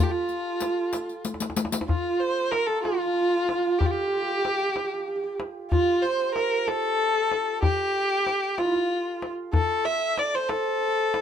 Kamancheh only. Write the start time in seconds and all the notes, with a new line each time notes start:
0.03 G4
0.11 F4
1.88 F4
2.20 C5
2.51 A#4
2.66 A4
2.83 F4
3.79 G4
3.86 F4
3.91 G4
5.71 F4
6.02 C5
6.35 A#4
6.68 A4
7.63 G4
8.58 F4
9.54 A4
9.85 E5
10.19 D5
10.35 C5
10.49 A4